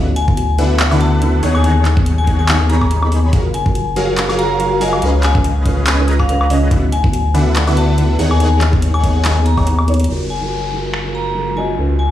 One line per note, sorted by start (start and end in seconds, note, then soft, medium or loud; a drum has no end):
0.00 1.41 D2 medium
0.16 0.58 G#5 loud
0.16 closed hi-hat medium
0.27 0.34 D3 medium
0.27 0.34 B3 medium
0.27 0.34 E4 medium
0.27 0.35 F#4 medium
0.27 kick loud
0.37 closed hi-hat medium
0.58 0.70 D3 medium
0.58 0.89 D3 medium
0.58 0.71 B3 medium
0.58 0.89 D4 medium
0.58 0.71 E4 medium
0.58 0.71 F#4 medium
0.58 0.89 B4 medium
0.58 0.89 E5 medium
0.58 0.89 F#5 medium
0.58 closed hi-hat medium
0.80 clap loud
0.80 closed hi-hat medium
0.91 1.19 D3 medium
0.91 1.41 D3 medium
0.91 1.20 B3 medium
0.91 1.41 D4 medium
0.91 1.20 E4 medium
0.91 1.20 F#4 medium
0.91 1.41 B4 medium
0.91 1.41 E5 medium
0.91 1.41 F#5 loud
0.91 high woodblock medium
1.01 1.41 A5 medium
1.01 closed hi-hat medium
1.21 1.29 D3 medium
1.21 1.30 B3 medium
1.21 1.30 E4 medium
1.21 1.30 F#4 medium
1.21 closed hi-hat medium
1.42 3.31 D#2 medium
1.42 1.62 D#3 medium
1.42 1.55 B3 medium
1.42 1.62 D#4 medium
1.42 1.55 D#4 medium
1.42 1.62 G#4 medium
1.42 1.62 C#5 medium
1.42 1.56 C#5 loud
1.42 1.62 F#5 medium
1.42 open hi-hat medium
1.55 1.61 G#5 medium
1.55 high woodblock medium
1.63 2.25 D#3 medium
1.63 1.76 B3 medium
1.63 2.25 D#4 medium
1.63 1.77 D#4 medium
1.63 2.25 G#4 medium
1.63 1.77 G#4 medium
1.63 2.25 C#5 medium
1.63 2.25 F#5 loud
1.63 1.72 G#5 medium
1.63 closed hi-hat medium
1.85 clap medium
1.85 closed hi-hat medium
1.96 2.03 B3 medium
1.96 2.03 D#4 medium
1.96 2.04 G#4 medium
1.96 kick loud
2.06 closed hi-hat medium
2.18 2.24 G#5 medium
2.27 2.46 D#3 medium
2.27 2.39 B3 medium
2.27 2.40 D#4 medium
2.27 2.46 D#4 medium
2.27 2.46 G#4 medium
2.27 2.40 G#4 medium
2.27 2.46 C#5 medium
2.27 2.46 F#5 loud
2.27 2.35 G#5 medium
2.27 kick medium
2.27 closed hi-hat medium
2.39 2.58 G#5 medium
2.49 2.61 D#3 medium
2.49 2.61 D#4 medium
2.49 2.61 G#4 medium
2.49 2.61 C#5 medium
2.49 2.61 G#5 loud
2.49 clap loud
2.49 closed hi-hat medium
2.59 2.67 B3 medium
2.59 2.68 D#4 medium
2.59 2.68 G#4 medium
2.69 3.31 D#3 medium
2.69 2.81 B3 medium
2.69 2.82 D#4 medium
2.69 3.31 D#4 medium
2.69 3.31 G#4 medium
2.69 2.82 G#4 loud
2.69 3.31 C#5 medium
2.69 3.02 A#5 medium
2.69 3.31 B5 loud
2.69 closed hi-hat medium
2.81 kick medium
2.81 high woodblock medium
2.91 closed hi-hat medium
3.02 3.09 B3 medium
3.02 3.10 D#4 medium
3.02 3.10 G#4 medium
3.02 high woodblock medium
3.11 3.19 B3 medium
3.11 3.20 D#4 medium
3.11 3.20 G#4 medium
3.11 open hi-hat medium
3.32 5.00 F#1 medium
3.32 3.45 F#3 medium
3.32 3.46 F#3 medium
3.32 3.45 F4 medium
3.32 3.46 F#4 medium
3.32 3.46 G#4 medium
3.32 3.46 A#4 medium
3.32 3.46 F5 medium
3.32 kick loud
3.32 closed hi-hat medium
3.54 3.96 G#5 loud
3.54 closed hi-hat medium
3.65 3.72 F#3 medium
3.65 3.72 F4 medium
3.65 3.73 G#4 medium
3.65 3.73 A#4 medium
3.65 kick loud
3.75 closed hi-hat medium
3.96 4.08 F#3 medium
3.96 4.27 F#3 medium
3.96 4.09 F4 medium
3.96 4.27 F#4 medium
3.96 4.27 G#4 medium
3.96 4.09 G#4 medium
3.96 4.27 A#4 medium
3.96 4.09 A#4 medium
3.96 4.27 F5 loud
3.96 closed hi-hat medium
4.18 clap loud
4.18 closed hi-hat medium
4.29 4.57 F#3 medium
4.29 4.79 F#3 medium
4.29 4.58 F4 medium
4.29 4.79 F#4 medium
4.29 4.79 G#4 medium
4.29 4.58 G#4 medium
4.29 4.79 A#4 medium
4.29 4.58 A#4 medium
4.29 4.79 F5 medium
4.29 high woodblock medium
4.39 4.79 A#5 medium
4.39 closed hi-hat medium
4.59 4.67 F#3 medium
4.59 4.68 F4 medium
4.59 4.68 G#4 medium
4.59 4.68 A#4 medium
4.59 closed hi-hat medium
4.80 4.93 F#3 loud
4.80 5.00 F#3 medium
4.80 4.93 F4 medium
4.80 5.00 F#4 medium
4.80 5.00 G#4 medium
4.80 4.93 G#4 medium
4.80 5.00 A#4 medium
4.80 4.94 D#5 loud
4.80 5.00 F5 medium
4.80 5.00 G#5 medium
4.80 open hi-hat medium
4.93 high woodblock medium
5.01 6.69 C#2 medium
5.01 5.14 C#3 medium
5.01 5.14 C#4 medium
5.01 5.63 C#4 medium
5.01 5.15 F4 medium
5.01 5.63 G#4 medium
5.01 5.63 B4 medium
5.01 5.15 B4 medium
5.01 5.63 D#5 medium
5.01 5.63 F5 loud
5.01 closed hi-hat medium
5.23 5.42 G#5 loud
5.23 clap medium
5.23 closed hi-hat medium
5.34 5.41 C#3 medium
5.34 5.41 C#4 medium
5.34 5.41 F4 medium
5.34 5.42 B4 medium
5.34 kick loud
5.44 closed hi-hat medium
5.64 5.77 C#3 medium
5.64 5.78 C#4 medium
5.64 5.84 C#4 loud
5.64 5.78 F4 medium
5.64 5.84 G#4 medium
5.64 5.84 B4 loud
5.64 5.78 B4 medium
5.64 5.84 D#5 medium
5.64 5.84 F5 loud
5.64 kick medium
5.64 closed hi-hat medium
5.86 5.99 C#4 medium
5.86 5.99 G#4 medium
5.86 5.99 B4 medium
5.86 5.99 D#5 medium
5.86 5.99 G#5 loud
5.86 clap loud
5.86 closed hi-hat medium
5.98 6.26 C#3 medium
5.98 6.26 C#4 medium
5.98 6.27 F4 medium
5.98 6.27 B4 medium
6.08 6.69 C#4 medium
6.08 6.69 G#4 medium
6.08 6.69 B4 medium
6.08 6.69 D#5 medium
6.08 6.69 A#5 loud
6.08 closed hi-hat medium
6.20 6.25 F5 medium
6.20 kick medium
6.20 high woodblock medium
6.28 6.36 C#3 medium
6.28 6.36 C#4 medium
6.28 6.37 F4 medium
6.28 6.37 B4 medium
6.28 6.36 F5 medium
6.28 closed hi-hat medium
6.41 high woodblock medium
6.49 6.62 C#3 medium
6.49 6.62 C#4 medium
6.49 6.62 F4 medium
6.49 6.63 D#5 loud
6.49 open hi-hat medium
6.70 8.17 D2 medium
6.70 6.83 D3 medium
6.70 6.84 D3 medium
6.70 6.83 B3 medium
6.70 6.84 D4 medium
6.70 6.83 E4 medium
6.70 6.84 F#4 medium
6.70 6.84 B4 medium
6.70 6.84 E5 medium
6.70 6.84 F#5 medium
6.70 kick loud
6.70 closed hi-hat medium
6.92 7.35 G#5 loud
6.92 closed hi-hat medium
7.03 7.10 D3 medium
7.03 7.10 B3 medium
7.03 7.10 E4 medium
7.03 7.11 F#4 medium
7.03 kick loud
7.13 closed hi-hat medium
7.34 7.46 D3 medium
7.34 7.65 D3 medium
7.34 7.47 B3 medium
7.34 7.65 D4 medium
7.34 7.47 E4 medium
7.34 7.47 F#4 medium
7.34 7.65 B4 medium
7.34 7.65 E5 medium
7.34 7.65 F#5 loud
7.34 closed hi-hat medium
7.56 clap loud
7.56 closed hi-hat medium
7.66 7.95 D3 medium
7.66 8.17 D3 medium
7.66 7.95 B3 medium
7.66 8.17 D4 medium
7.66 7.96 E4 medium
7.66 7.96 F#4 medium
7.66 8.17 B4 medium
7.66 8.17 E5 medium
7.66 8.17 F#5 loud
7.66 high woodblock medium
7.77 8.17 A5 medium
7.77 closed hi-hat medium
7.97 8.05 D3 medium
7.97 8.06 B3 medium
7.97 8.06 E4 medium
7.97 8.06 F#4 medium
7.97 closed hi-hat medium
8.18 10.07 D#2 medium
8.18 8.38 D#3 medium
8.18 8.31 B3 medium
8.18 8.31 D#4 medium
8.18 8.38 D#4 medium
8.18 8.38 G#4 medium
8.18 8.38 C#5 medium
8.18 8.32 C#5 loud
8.18 8.38 F#5 medium
8.18 open hi-hat medium
8.31 8.37 G#5 medium
8.31 high woodblock medium
8.39 9.01 D#3 loud
8.39 8.52 B3 medium
8.39 9.01 D#4 medium
8.39 8.52 D#4 medium
8.39 9.01 G#4 medium
8.39 8.53 G#4 medium
8.39 9.01 C#5 medium
8.39 9.01 F#5 loud
8.39 8.48 G#5 medium
8.39 closed hi-hat medium
8.61 clap medium
8.61 closed hi-hat medium
8.72 8.79 B3 medium
8.72 8.79 D#4 medium
8.72 8.80 G#4 medium
8.72 kick loud
8.82 closed hi-hat medium
8.94 9.00 G#5 medium
8.94 high woodblock medium
9.03 9.22 D#3 loud
9.03 9.15 B3 medium
9.03 9.22 D#4 loud
9.03 9.16 D#4 medium
9.03 9.22 G#4 medium
9.03 9.16 G#4 medium
9.03 9.22 C#5 medium
9.03 9.22 F#5 loud
9.03 kick medium
9.03 closed hi-hat medium
9.15 9.34 G#5 medium
9.25 9.37 D#3 medium
9.25 9.37 D#4 medium
9.25 9.37 G#4 medium
9.25 9.37 C#5 medium
9.25 9.37 G#5 loud
9.25 clap loud
9.25 closed hi-hat medium
9.36 9.64 B3 medium
9.36 9.65 D#4 medium
9.36 9.65 G#4 medium
9.46 9.79 A#5 medium
9.46 closed hi-hat medium
9.57 9.68 D#3 medium
9.57 9.68 D#4 medium
9.57 9.68 G#4 medium
9.57 9.68 C#5 medium
9.57 9.68 F#5 loud
9.57 kick medium
9.57 high woodblock medium
9.66 9.74 B3 medium
9.66 9.75 D#4 medium
9.66 9.75 G#4 medium
9.66 closed hi-hat medium
9.79 high woodblock medium
9.87 10.00 B3 medium
9.87 10.00 D#4 medium
9.87 10.01 C#5 loud
9.87 closed hi-hat medium
9.94 closed hi-hat medium
10.00 closed hi-hat medium
10.04 closed hi-hat medium
10.08 11.76 F#1 medium
10.08 10.21 F#3 medium
10.08 12.11 G#3 medium
10.08 11.76 A#3 medium
10.08 11.76 F4 medium
10.08 10.21 F4 medium
10.08 11.76 F#4 medium
10.08 10.22 G#4 medium
10.08 10.22 A#4 medium
10.08 downlifter medium
10.30 10.72 G#5 medium
10.41 10.48 F#3 medium
10.41 10.48 F4 medium
10.41 10.48 G#4 medium
10.41 10.49 A#4 medium
10.71 10.84 F#3 medium
10.71 10.85 F4 medium
10.71 10.85 G#4 medium
10.71 10.85 A#4 medium
10.94 finger snap medium
11.04 11.33 F#3 medium
11.04 11.33 F4 medium
11.04 11.34 G#4 medium
11.04 11.34 A#4 medium
11.15 11.55 A#5 medium
11.35 11.43 F#3 medium
11.35 11.43 F4 medium
11.35 11.44 G#4 medium
11.35 11.44 A#4 medium
11.56 11.69 F#3 medium
11.56 11.69 F4 medium
11.56 11.69 G#4 medium
11.56 11.70 D#5 medium
11.56 11.76 G#5 medium
11.77 12.11 C#2 medium
11.77 11.90 C#3 medium
11.77 12.11 C#3 medium
11.77 12.11 B3 medium
11.77 11.90 C#4 medium
11.77 12.11 F4 medium
11.77 11.91 F4 medium
11.77 11.91 B4 medium
11.99 12.11 G#5 medium